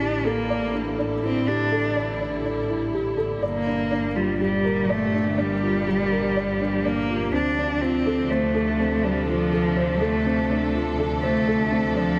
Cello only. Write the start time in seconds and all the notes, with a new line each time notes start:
Already playing: D4
0.26 A#3
1.24 C4
1.48 D4
3.43 A#3
4.15 G3
4.40 G3
4.90 A3
5.38 G3
6.84 A#3
7.32 D4
7.81 C4
8.29 A3
9.04 G3
9.28 F3
10.00 A3
11.22 A3
11.96 F3